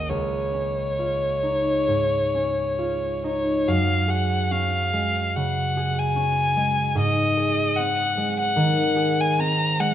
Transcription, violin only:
Already playing: D#5
0.10 C#5
3.26 C#5
3.69 F5
4.10 F#5
4.51 F5
5.36 F#5
5.99 G#5
6.99 D#5
7.76 F#5
8.40 F#5
9.21 G#5
9.40 A#5
9.81 F#5

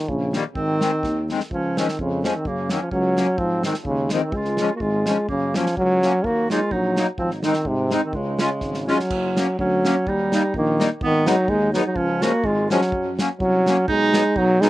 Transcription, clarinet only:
0.55 C4
1.52 C#4
1.78 C4
2.00 G#3
2.21 C#4 D#4
2.34 C4
2.46 A#3
2.70 C4
2.81 C#4
2.91 C#4
3.38 C4
3.66 C4
3.87 G#3
4.15 C#4
4.23 C4
4.36 F4
4.76 F#4
4.81 F4
5.28 A#3
5.56 C#4
5.78 C#4
6.26 F#4
6.51 F4
6.71 D#4
7.19 C4
7.43 C4
7.66 G#3
8.04 C4
8.14 G#3
8.87 C#4
9.60 C#4
10.08 D#4
10.57 A#3
11.02 B3
11.29 D#4
11.49 D#4
11.74 D#4
11.86 D#4
11.96 C#4
12.23 F#4
12.47 F4
12.71 C#4
13.41 C#4
13.88 D#4
14.36 D#4
14.63 C#4

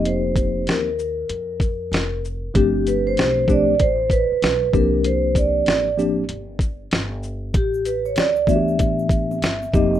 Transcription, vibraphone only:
0.06 C5
0.68 A#4
2.56 G4
2.87 B4
3.07 C5
3.51 D5
3.81 C5
4.12 B4
4.74 A#4
5.05 C5
5.37 D5
7.56 G4
7.86 B4
8.06 C#5
8.17 D5
8.48 E5
9.72 D#5

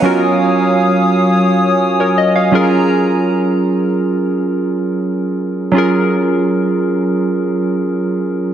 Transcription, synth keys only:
Already playing: D#5 F#5
0.02 F#3 C#4 F4 F#4 A#4
2.00 A#4 C#5
2.18 D#5
2.36 C#5 F5
2.52 F#3 C#4 F4 G#4 A#4
5.72 F#3 C#4 F4
5.77 G#4 A#4

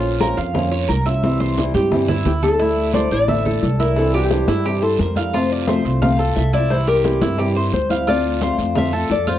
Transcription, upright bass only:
Already playing: A#1
0.38 F2
0.89 C2
1.74 G2
2.25 D2
3.11 A1
3.63 C2
4.48 G2
4.99 F2
5.85 C2
6.36 C2
7.22 G2
7.73 D2
8.58 F2
9.09 F2

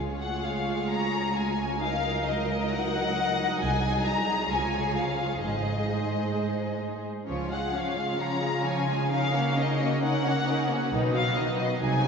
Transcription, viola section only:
Already playing: G#3 F4
1.80 F#3 D#4
4.51 F3 F4
5.42 G#3 D#4
7.28 F3 C#4
7.51 G#3 F4
7.74 F3 C#4
7.97 G#3 F4
8.20 F3 C#4
8.43 G#3 F4
8.66 F3 C#4
8.89 G#3 F4
9.12 C#4 D#4
9.35 A#3 C#4
9.58 C#4 D#4
9.81 A#3 C#4
10.03 C#4 D#4
10.26 A#3 C#4
10.48 C#4 D#4
10.71 A#3 C#4
10.92 D#3 D#4
11.15 F#3 B3
11.37 D#3 D#4
11.59 F#3 B3
11.81 F#3 D#4
12.04 G#3 C4

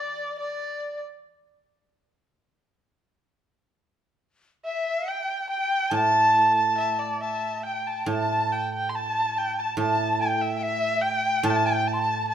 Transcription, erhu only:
Already playing: D5
0.39 D5
4.65 E5
5.08 G5
5.50 G5
5.94 A5
6.78 E5
6.99 D5
7.21 E5
7.63 G5
7.87 A5
8.07 A5
8.52 G5
8.74 G5
8.89 C6
8.95 A5
9.38 G5
9.59 A5
9.80 A5
10.22 G5
10.41 E5
10.61 E5
11.01 G5
11.45 A5
11.50 G5
11.56 A5
11.66 G5
11.87 A5
12.28 A5

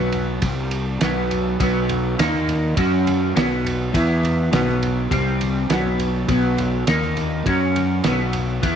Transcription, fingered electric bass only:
Already playing: B1
0.43 C2
1.02 B1
1.61 B1
2.19 D#2
2.78 F#2
3.36 B1
3.95 E2
4.52 B1
5.11 C2
5.70 B1
6.29 B1
6.87 D#2
7.46 F#2
8.05 B1
8.63 E2

